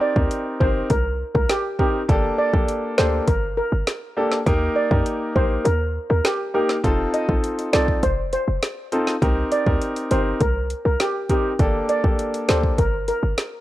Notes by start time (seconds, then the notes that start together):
Already playing: C4 D#4 G4 A#4
0.01 D5
0.16 D2 C4 D#4 G4 A#4, kick
0.31 closed hi-hat
0.60 G1 C4 D#4 G4 A#4 C5, kick
0.90 C2 A#4, kick, closed hi-hat
1.35 C2 A#4, kick
1.49 G4, snare, closed hi-hat
1.79 C4 D#4 G4 A#4, kick
2.08 G1 A#3 D4 G4 A4, kick, closed hi-hat
2.38 D5
2.53 A#1 A#3 D4 G4 A4, kick
2.68 closed hi-hat
2.98 D2 A#3 D4 G4 A4 C5, snare
3.27 G1 A#4, kick, closed hi-hat
3.57 A#4
3.72 G1
3.87 snare, closed hi-hat
4.17 A#3 D4 G4 A4
4.32 snare
4.46 D#2 A#3 D#4 G4 A#4, kick, closed hi-hat
4.76 D5
4.91 F2 A#3 D#4 G4 A#4, kick
5.06 closed hi-hat
5.35 A#1 A#3 D#4 G4 A#4 C5, kick
5.65 D#2 A#4, closed hi-hat
6.10 D#2 A#4
6.25 G4, cross-stick, snare, closed hi-hat
6.54 A#3 D#4 G4 A#4
6.69 snare
6.84 F1 C4 D#4 F4 A4, kick, closed hi-hat
7.14 D#5, closed hi-hat
7.28 A1 C4 D#4 F4 A4, kick
7.44 closed hi-hat
7.59 closed hi-hat
7.73 C2 C4 D#4 F4 A4 D5, snare, closed hi-hat
7.88 kick
8.03 F1 C5, kick, closed hi-hat
8.33 C5, closed hi-hat
8.48 F1
8.62 snare, closed hi-hat
8.92 C4 D#4 F4 A4, closed hi-hat
9.07 snare
9.22 C2 C4 D#4 G4 A#4, kick, closed hi-hat
9.52 D5, closed hi-hat
9.66 D2 C4 D#4 G4 A#4, kick
9.82 closed hi-hat
9.96 closed hi-hat
10.11 G1 C4 D#4 G4 A#4 C5, closed hi-hat
10.41 C2 A#4, kick, closed hi-hat
10.70 closed hi-hat
10.85 C2 A#4
11.00 G4, snare, closed hi-hat
11.29 C4 D#4 G4 A#4, kick, closed hi-hat
11.59 G1 A#3 D4 G4 A4, kick, closed hi-hat
11.89 D5, closed hi-hat
12.04 A#1 A#3 D4 G4 A4, kick
12.19 closed hi-hat
12.34 closed hi-hat
12.48 D2 A#3 D4 G4 A4 C5, snare, closed hi-hat
12.63 kick
12.78 G1 A#4, kick, closed hi-hat
13.08 A#4, closed hi-hat
13.23 G1
13.38 snare, closed hi-hat